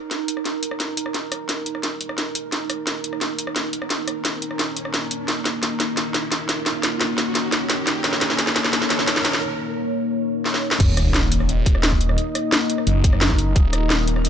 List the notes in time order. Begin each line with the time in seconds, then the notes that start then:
Already playing: A#3 D#4 A#4 D#5 A#5, riser
0.11 snare, closed hi-hat
0.28 closed hi-hat
0.37 cross-stick
0.45 snare, closed hi-hat
0.63 closed hi-hat
0.71 cross-stick
0.80 snare, closed hi-hat
0.97 closed hi-hat
1.06 cross-stick
1.14 snare, closed hi-hat
1.32 cross-stick, closed hi-hat
1.49 snare, closed hi-hat
1.66 closed hi-hat
1.75 cross-stick
1.83 snare, closed hi-hat
2.01 closed hi-hat
2.09 cross-stick
2.18 snare, closed hi-hat
2.35 closed hi-hat
2.52 snare, closed hi-hat
2.70 cross-stick, closed hi-hat
2.87 snare, closed hi-hat
3.04 closed hi-hat
3.13 cross-stick
3.21 snare, closed hi-hat
3.39 closed hi-hat
3.47 cross-stick
3.56 snare, closed hi-hat
3.73 closed hi-hat
3.82 cross-stick
3.90 snare, closed hi-hat
4.08 cross-stick, closed hi-hat
4.25 snare, closed hi-hat
4.42 closed hi-hat
4.51 cross-stick
4.59 snare, closed hi-hat
4.77 closed hi-hat
4.85 cross-stick
4.94 snare, closed hi-hat
5.11 closed hi-hat
5.28 C#5, snare, closed hi-hat
5.45 snare, closed hi-hat
5.63 snare, closed hi-hat
5.80 snare, closed hi-hat
5.97 snare, closed hi-hat
6.14 snare, closed hi-hat
6.32 snare, closed hi-hat
6.49 snare, closed hi-hat
6.66 snare, closed hi-hat
6.83 snare, closed hi-hat
7.01 snare, closed hi-hat
7.18 snare, closed hi-hat
7.35 snare, closed hi-hat
7.52 snare, closed hi-hat
7.70 snare, closed hi-hat
7.87 snare, closed hi-hat
8.04 snare, closed hi-hat
8.13 snare
8.21 snare, closed hi-hat
8.30 snare
8.39 snare, closed hi-hat
8.47 snare
8.56 snare, closed hi-hat
8.64 snare
8.73 snare, closed hi-hat
8.82 snare
8.90 snare, closed hi-hat
8.99 snare
9.08 snare, closed hi-hat
9.16 snare
9.25 snare, closed hi-hat
9.33 snare
10.45 snare
10.54 snare
10.71 snare
10.80 D#1 A#3 D#4 D#5, kick, closed hi-hat, crash, sub drop
10.93 A#4
10.97 cross-stick, closed hi-hat
11.14 snare, closed hi-hat
11.32 closed hi-hat
11.40 cross-stick
11.49 closed hi-hat
11.66 kick, closed hi-hat
11.75 cross-stick
11.83 snare, closed hi-hat
11.92 kick
12.01 A#5, closed hi-hat
12.09 cross-stick
12.18 closed hi-hat
12.35 cross-stick, closed hi-hat
12.52 snare, closed hi-hat
12.70 closed hi-hat
12.78 cross-stick
12.87 F#1, closed hi-hat
13.04 kick, closed hi-hat
13.13 cross-stick
13.21 snare, closed hi-hat
13.30 kick, snare
13.39 closed hi-hat
13.56 D#1, kick, closed hi-hat
13.73 cross-stick, closed hi-hat
13.90 snare, closed hi-hat
14.08 closed hi-hat
14.16 cross-stick
14.25 closed hi-hat